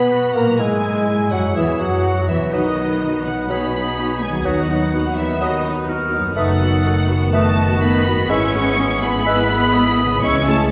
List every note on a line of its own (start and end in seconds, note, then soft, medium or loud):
0.00 0.34 B2 medium
0.00 0.40 B2 soft
0.00 0.45 F#3 soft
0.00 0.34 B3 medium
0.00 0.36 B3 medium
0.00 2.43 F#4 soft
0.00 0.13 G#4 soft
0.00 0.34 B4 soft
0.00 0.34 B5 medium
0.00 0.35 B5 soft
0.12 0.61 F#4 soft
0.35 0.59 A#2 soft
0.35 0.60 A#3 soft
0.35 0.59 A#3 soft
0.35 0.59 A#3 medium
0.35 0.46 A#4 soft
0.35 0.59 A#5 soft
0.35 0.59 A#5 medium
0.35 0.59 A#5 soft
0.42 2.33 B2 soft
0.46 2.38 F#3 soft
0.50 2.50 E4 soft
0.58 1.31 G#2 medium
0.58 1.31 G#3 medium
0.58 1.33 G#3 medium
0.58 1.30 G#3 medium
0.58 1.55 E4 soft
0.58 1.33 G#4 medium
0.58 1.31 G#5 medium
0.58 1.32 G#5 medium
0.58 1.31 G#5 medium
1.31 1.56 F#2 soft
1.31 1.56 F#3 soft
1.31 1.55 F#3 soft
1.31 1.56 F#3 soft
1.31 1.56 F#4 soft
1.31 1.55 F#5 medium
1.31 1.56 F#5 soft
1.31 1.56 F#5 medium
1.55 1.79 E2 medium
1.55 1.79 E3 soft
1.55 1.80 E3 soft
1.55 1.79 E4 soft
1.55 2.08 G#4 soft
1.55 1.80 E5 soft
1.55 1.80 E5 medium
1.55 1.65 E5 soft
1.79 2.27 F#2 medium
1.79 2.28 F#3 soft
1.79 2.28 F#3 medium
1.79 2.28 F#3 soft
1.79 2.28 F#3 medium
1.79 2.27 F#4 soft
1.79 2.29 F#5 medium
1.79 2.28 F#5 soft
2.06 2.55 F#4 soft
2.28 2.53 E2 soft
2.28 2.39 E3 soft
2.28 2.52 E3 soft
2.28 2.53 E3 soft
2.28 2.52 E4 soft
2.28 2.52 E5 soft
2.28 2.36 E5 medium
2.28 2.53 E5 soft
2.35 4.38 B2 soft
2.39 4.31 F#3 soft
2.44 4.35 D#4 soft
2.48 4.39 B4 soft
2.52 4.41 B1 soft
2.52 3.25 D#3 medium
2.52 6.32 F#3 soft
2.52 2.70 F#3 soft
2.52 6.32 B3 medium
2.52 2.76 D#4 soft
2.52 2.75 F#4 soft
2.52 2.70 B4 soft
2.52 3.52 B4 soft
2.52 3.24 D#5 medium
2.52 3.24 D#5 soft
2.52 2.75 D#6 soft
2.77 3.01 B3 soft
2.77 3.00 D#4 soft
3.01 3.25 D#4 soft
3.01 3.26 F#4 soft
3.25 3.50 F#3 soft
3.25 3.50 B3 soft
3.25 3.49 D#4 soft
3.25 3.33 F#5 medium
3.25 3.50 F#5 medium
3.49 3.67 F#3 soft
3.49 4.22 B3 medium
3.49 3.73 D#4 soft
3.49 3.73 F#4 soft
3.49 4.47 G#4 medium
3.49 3.67 B4 soft
3.49 4.20 B5 medium
3.49 4.21 B5 medium
3.49 3.73 D#6 soft
3.74 3.98 B3 soft
3.74 3.96 D#4 soft
3.97 4.20 D#4 soft
3.97 4.21 F#4 soft
4.21 4.45 G#3 medium
4.21 4.45 B3 soft
4.21 4.44 D#4 soft
4.21 4.45 G#5 medium
4.27 6.29 D#3 soft
4.32 8.22 F#3 soft
4.36 6.26 D#4 soft
4.40 6.31 B4 soft
4.40 5.17 F#5 medium
4.44 6.32 D#2 medium
4.44 4.61 F#3 soft
4.44 5.16 F#3 soft
4.44 4.67 D#4 soft
4.44 4.67 F#4 soft
4.44 4.92 F#4 soft
4.44 4.61 B4 soft
4.44 5.16 F#5 medium
4.44 4.67 D#6 soft
4.69 4.93 B3 soft
4.69 4.92 D#4 soft
4.93 5.17 D#4 soft
4.93 5.17 F#4 soft
4.93 5.90 B4 medium
5.17 5.41 E3 medium
5.17 5.41 B3 soft
5.17 5.40 D#4 soft
5.17 5.41 E5 medium
5.41 5.65 D#3 medium
5.41 5.57 F#3 soft
5.41 5.64 D#4 soft
5.41 5.64 F#4 soft
5.41 5.59 B4 soft
5.41 5.65 D#5 medium
5.41 5.66 D#5 soft
5.41 5.63 D#6 medium
5.65 5.89 B3 soft
5.65 5.88 D#4 soft
5.89 6.12 D#4 soft
5.89 6.13 F#4 soft
5.89 6.22 A#4 medium
6.13 6.36 B3 soft
6.13 6.35 D#4 soft
6.18 8.23 F#2 medium
6.23 8.25 A3 soft
6.28 8.27 D#4 soft
6.32 8.25 F#1 medium
6.32 6.58 A3 medium
6.32 6.58 D#4 medium
6.32 7.04 A4 medium
6.32 8.24 B4 soft
6.36 8.26 D#3 medium
6.36 7.29 F#3 medium
6.36 6.53 A3 medium
6.36 10.07 B3 medium
6.36 6.53 B4 medium
6.36 7.29 F#5 medium
6.36 6.59 D#6 medium
6.60 6.84 B3 soft
6.60 6.85 F#4 soft
6.85 7.09 A3 soft
6.85 7.09 D#4 soft
7.09 7.33 B3 medium
7.09 7.33 F#4 soft
7.33 7.50 A3 medium
7.33 7.80 A3 medium
7.33 7.56 A3 medium
7.33 7.56 D#4 soft
7.33 8.26 F#4 medium
7.33 7.50 B4 medium
7.33 7.81 A5 medium
7.33 7.80 A5 medium
7.33 7.56 D#6 medium
7.57 7.81 B3 medium
7.57 7.81 F#4 medium
7.81 8.05 A3 medium
7.81 8.29 B3 medium
7.81 8.05 D#4 medium
7.81 8.29 B5 medium
8.05 8.30 B3 medium
8.05 8.30 F#4 medium
8.11 10.16 G#2 medium
8.16 10.08 G#3 medium
8.20 10.13 E4 soft
8.25 10.23 B4 soft
8.29 10.20 G#1 medium
8.29 10.07 E3 medium
8.29 8.47 G#3 medium
8.29 8.52 G#3 medium
8.29 9.03 C#4 medium
8.29 8.77 E4 medium
8.29 8.52 E4 medium
8.29 8.47 B4 medium
8.29 9.03 C#6 medium
8.29 9.02 C#6 loud
8.29 8.53 E6 medium
8.54 8.78 B3 medium
8.54 8.78 G#4 medium
8.78 9.02 G#3 medium
8.78 9.02 E4 medium
8.78 9.26 G#4 medium
9.02 9.27 B3 medium
9.02 10.24 B3 medium
9.02 9.27 G#4 medium
9.02 10.21 B5 loud
9.02 10.24 B5 medium
9.26 9.49 G#3 medium
9.26 9.43 G#3 medium
9.26 9.49 E4 medium
9.26 9.75 B4 medium
9.26 9.43 B4 medium
9.26 9.49 E6 medium
9.50 9.75 B3 medium
9.50 9.75 G#4 medium
9.74 9.99 G#3 medium
9.74 9.99 E4 medium
9.74 10.24 D#5 medium
10.00 10.24 B3 medium
10.00 10.24 G#4 medium
10.05 10.71 C#3 medium
10.10 10.71 G#3 medium
10.14 10.71 E4 soft
10.18 10.71 C#5 soft
10.22 10.71 C#2 medium
10.22 10.69 E3 medium
10.22 10.68 G#3 medium
10.22 10.46 G#3 medium
10.22 10.47 C#4 medium
10.22 10.69 C#4 medium
10.22 10.46 E4 medium
10.22 10.71 C#5 medium
10.22 10.69 C#5 medium
10.22 10.47 C#6 medium
10.22 10.68 E6 medium
10.47 10.71 A3 medium
10.47 10.71 C#4 medium
10.47 10.71 G#4 medium
10.47 10.71 A5 medium
10.47 10.56 A5 medium